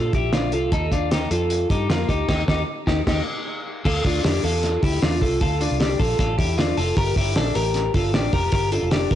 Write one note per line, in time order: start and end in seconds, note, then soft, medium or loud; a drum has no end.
0.00 0.10 A#2 medium
0.00 0.14 F4 medium
0.00 0.14 A4 medium
0.13 0.53 A#1 medium
0.13 0.34 E4 medium
0.13 0.33 G4 medium
0.13 kick loud
0.13 closed hi-hat medium
0.33 0.54 D4 medium
0.33 0.53 F4 medium
0.33 snare loud
0.33 closed hi-hat medium
0.52 0.70 C2 medium
0.52 0.73 F4 medium
0.52 0.71 A4 medium
0.52 closed hi-hat medium
0.72 1.28 D#2 medium
0.72 0.92 D#4 medium
0.72 0.92 A4 loud
0.72 kick loud
0.72 closed hi-hat medium
0.92 1.12 D4 medium
0.92 1.12 F4 medium
0.92 kick medium
0.92 closed hi-hat medium
1.11 1.31 D#4 medium
1.11 1.31 G4 medium
1.11 snare loud
1.11 closed hi-hat loud
1.31 1.64 F2 medium
1.31 1.69 F4 medium
1.31 1.68 A4 medium
1.31 closed hi-hat medium
1.50 closed hi-hat medium
1.70 1.87 G2 medium
1.70 1.89 D#4 medium
1.70 1.90 G4 medium
1.70 kick loud
1.70 closed hi-hat medium
1.89 2.06 F2 medium
1.89 2.10 A#3 medium
1.89 2.09 F4 medium
1.89 snare loud
1.89 closed hi-hat medium
2.09 2.26 D2 medium
2.09 2.28 D#4 medium
2.09 2.28 G4 medium
2.09 kick medium
2.09 closed hi-hat medium
2.28 2.42 D#2 loud
2.28 2.43 D#4 loud
2.28 2.42 G4 loud
2.28 kick loud
2.28 snare loud
2.28 crash medium
2.48 2.62 D#2 loud
2.48 2.62 D#4 medium
2.48 2.62 G4 medium
2.48 kick loud
2.48 snare loud
2.87 3.01 D#2 loud
2.87 3.01 D#4 loud
2.87 3.01 G4 loud
2.87 kick loud
2.87 snare loud
3.07 3.21 D#2 loud
3.07 3.21 D#4 loud
3.07 3.21 G4 loud
3.07 kick loud
3.07 snare loud
3.07 crash medium
3.85 4.02 D2 medium
3.85 4.04 F4 medium
3.85 4.05 A4 loud
3.85 kick loud
3.85 crash loud
4.04 4.21 D2 loud
4.04 4.24 D4 medium
4.04 4.24 F4 medium
4.04 kick medium
4.04 hi-hat pedal medium
4.04 open hi-hat medium
4.24 4.41 F2 medium
4.24 4.44 D4 medium
4.24 4.44 G4 medium
4.24 snare loud
4.24 hi-hat pedal medium
4.24 open hi-hat loud
4.44 4.77 E2 medium
4.44 4.81 F4 medium
4.44 4.81 A4 medium
4.44 hi-hat pedal medium
4.44 open hi-hat medium
4.63 snare soft
4.63 hi-hat pedal medium
4.63 open hi-hat medium
4.83 4.99 D2 medium
4.83 5.03 E4 medium
4.83 5.02 G4 medium
4.83 kick loud
4.83 hi-hat pedal medium
4.83 open hi-hat medium
5.02 5.19 E2 medium
5.02 5.22 D4 medium
5.02 5.21 F4 medium
5.02 snare loud
5.02 hi-hat pedal medium
5.02 open hi-hat medium
5.22 5.38 C2 medium
5.22 5.41 F4 medium
5.22 5.40 A4 medium
5.22 kick medium
5.22 hi-hat pedal medium
5.22 open hi-hat medium
5.41 5.66 D2 loud
5.41 5.59 F4 medium
5.41 5.61 A4 medium
5.41 kick loud
5.41 hi-hat pedal medium
5.41 open hi-hat loud
5.61 5.80 D4 medium
5.61 5.79 F4 medium
5.61 hi-hat pedal medium
5.61 open hi-hat medium
5.71 5.96 C2 medium
5.80 6.00 D4 medium
5.80 6.00 G4 medium
5.80 snare loud
5.80 hi-hat pedal medium
5.80 open hi-hat medium
6.00 6.16 A#1 medium
6.00 6.19 F4 medium
6.00 6.18 A4 medium
6.00 kick loud
6.00 hi-hat pedal medium
6.00 open hi-hat medium
6.19 6.36 A1 medium
6.19 6.37 F4 medium
6.19 6.38 A4 loud
6.19 kick loud
6.19 snare soft
6.19 hi-hat pedal medium
6.19 open hi-hat medium
6.38 6.72 E2 loud
6.38 6.58 E4 medium
6.38 6.57 G4 medium
6.38 kick medium
6.38 hi-hat pedal medium
6.38 open hi-hat medium
6.58 6.78 D4 medium
6.58 6.77 F4 loud
6.58 snare loud
6.58 hi-hat pedal medium
6.58 open hi-hat medium
6.77 6.94 F1 loud
6.77 6.97 F4 medium
6.77 6.97 A4 medium
6.77 hi-hat pedal medium
6.77 open hi-hat medium
6.97 7.13 G1 medium
6.97 7.15 G4 medium
6.97 7.17 A#4 loud
6.97 kick loud
6.97 hi-hat pedal medium
6.97 open hi-hat medium
7.16 7.33 G1 loud
7.16 7.36 E4 medium
7.16 7.36 G4 medium
7.16 kick medium
7.16 hi-hat pedal medium
7.16 open hi-hat medium
7.36 7.53 A#1 loud
7.36 7.56 D4 medium
7.36 7.55 A4 medium
7.36 snare loud
7.36 hi-hat pedal medium
7.36 open hi-hat loud
7.55 7.89 A1 loud
7.55 7.92 G4 medium
7.55 7.92 A#4 medium
7.55 hi-hat pedal medium
7.55 open hi-hat medium
7.74 snare soft
7.74 hi-hat pedal medium
7.74 open hi-hat medium
7.94 8.14 G1 medium
7.94 8.14 F4 medium
7.94 8.14 A4 medium
7.94 kick loud
7.94 hi-hat pedal medium
7.94 open hi-hat medium
8.14 8.31 A1 medium
8.14 8.34 D4 medium
8.14 8.32 G4 medium
8.14 snare loud
8.14 hi-hat pedal medium
8.14 open hi-hat medium
8.33 8.50 F1 medium
8.33 8.52 G4 medium
8.33 8.51 A#4 medium
8.33 kick medium
8.33 hi-hat pedal medium
8.33 open hi-hat medium
8.52 8.78 G1 loud
8.52 8.72 G4 medium
8.52 8.72 A#4 medium
8.52 kick loud
8.52 hi-hat pedal medium
8.52 open hi-hat loud
8.72 8.91 F4 medium
8.72 8.92 A4 medium
8.72 hi-hat pedal medium
8.72 open hi-hat medium
8.82 9.07 F1 medium
8.91 9.12 D4 medium
8.91 9.11 G4 medium
8.91 snare loud
8.91 hi-hat pedal medium
8.91 open hi-hat loud
9.11 9.15 G1 medium
9.11 9.15 G4 medium
9.11 9.15 A#4 medium
9.11 kick medium
9.11 hi-hat pedal medium
9.11 open hi-hat medium